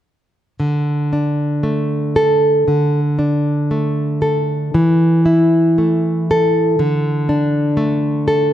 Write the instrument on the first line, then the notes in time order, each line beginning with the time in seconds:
nylon-string guitar
0.60 D3
1.13 D4
1.63 A3
2.16 A4
2.68 D3
3.19 D4
3.71 A3
4.22 A4
4.74 E3
5.26 E4
5.78 A3
6.31 A4
6.79 D3
7.29 D4
7.77 A3
8.28 A4